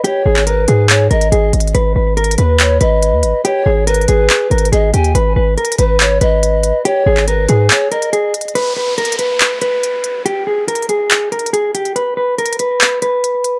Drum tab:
HH |x-----------x-----x-----x-----x--x--x-----x-x-x-|x-----------x-x-x-x-----x-----x-----x-----x-----|x-----------x-x-x-x-----x-----x-x-x-x-----x--x--|x-----------x-x-x-x-----x-----x-----x-----x-----|
CP |---------x--------------x-----------------------|------------------------x-----------------------|------------------------x-----------------------|------------------------x-----------------------|

HH |x-----------x-----x-----x-----x--x--x-----x-x-x-|x-----------x-x-x-x-----x-----x-----x-----x-----|x-----------x-x-x-x-----x-----x-x-x-x-----x--x--|x-----------x-x-x-x-----x-----x-----x-----x-----|
CP |---------x--------------x-----------------------|------------------------x-----------------------|------------------------x-----------------------|------------------------x-----------------------|